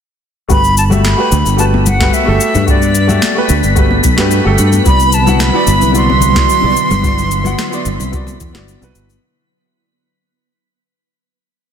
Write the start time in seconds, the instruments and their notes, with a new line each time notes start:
0.48 fretless electric bass G1, grand piano A3 F#4 G4 B4, synth texture B3 B6, flute B5, kick, cabasa
0.64 cabasa
0.77 flute A5, cabasa
0.90 grand piano A3 F#4 G4 E5, low conga, cabasa
1.04 flute B5, snare, cabasa
1.16 grand piano A3 F#4 G4 B4
1.32 fretless electric bass D2, cabasa
1.46 fretless electric bass G1, cabasa
1.57 grand piano A3 F#4 G4 B4, flute A5, cabasa
1.74 high conga
1.86 flute F#5, low conga, cabasa
1.99 grand piano A3 F#4 G4 B4, kick, snare, cabasa
2.13 flute E5, cabasa
2.25 fretless electric bass G1, grand piano A3 F#4 G4 A4
2.41 cabasa
2.55 fretless electric bass G2, high conga, low conga, cabasa
2.66 grand piano A3 F#4 G4 B4, flute D5, kick, cabasa
2.82 cabasa
2.95 cabasa
3.07 grand piano A3 F#4 G4 E5, low conga, cabasa
3.22 snare, cabasa
3.35 grand piano A3 F#4 G4 B4
3.49 fretless electric bass D2, cabasa
3.63 fretless electric bass G1, cabasa
3.75 grand piano A3 F#4 G4 B4, kick, cabasa
3.91 high conga
4.04 fretless electric bass B1, kick, cabasa
4.16 fretless electric bass G2, grand piano A3 F#4 G4 B4, snare, cabasa
4.31 cabasa
4.44 fretless electric bass G1, grand piano A3 F#4 G4 A4
4.58 fretless electric bass G2, cabasa
4.72 high conga, cabasa
4.84 fretless electric bass C2, analog synth pad D3 F#3 B3 E4, grand piano B3 E4 F#4 D5, flute B5, kick, cabasa
5.00 cabasa
5.13 flute A5, cabasa
5.25 grand piano B3 E4 F#4 F#5, low conga, cabasa
5.40 flute B5, snare, cabasa
5.52 grand piano B3 E4 F#4 D5
5.67 fretless electric bass G1, cabasa
5.81 fretless electric bass C2, cabasa
5.92 grand piano B3 E4 F#4 D5, flute C6, cabasa
6.10 high conga
6.21 low conga, cabasa
6.34 grand piano B3 E4 F#4 D5, kick, snare, cabasa
6.49 cabasa
6.61 fretless electric bass C2, grand piano B2 E4 F#4 D5
6.77 cabasa
6.91 fretless electric bass G1, high conga, low conga, cabasa
7.02 grand piano B3 E4 F#4 D5, kick, cabasa
7.18 cabasa
7.31 cabasa
7.44 grand piano B3 E4 F#4 F#5, low conga, cabasa
7.59 snare, cabasa
7.70 grand piano B3 E4 F#4 D5, cabasa
7.86 fretless electric bass G1, cabasa
8.00 fretless electric bass C2, cabasa
8.11 grand piano B3 E4 F#4 D5, kick, cabasa
8.27 high conga, cabasa
8.40 fretless electric bass E2, kick, cabasa
8.53 fretless electric bass G1, grand piano B3 E4 F#4 D5, snare, cabasa
8.68 cabasa
8.81 fretless electric bass C2, grand piano B2 E4 F#4 B4, cabasa
8.95 fretless electric bass G1, cabasa
9.09 high conga, cabasa